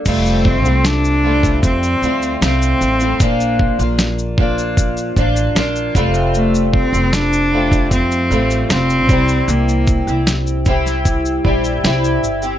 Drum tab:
CC |x---------------|----------------|----------------|----------------|
SH |xx-xxx-xxxxxxxxx|xx-xxx-xxxxxxxxx|xx-xxx-xxxxxxxxx|xxxxxxxxxx-xxxxx|
SD |----o-------o---|----o-------o---|----o-------o---|----o--o----o---|
BD |o-o----oo-------|o-o---o-o-o---o-|--o----oo-----o-|--o---o-o-o-----|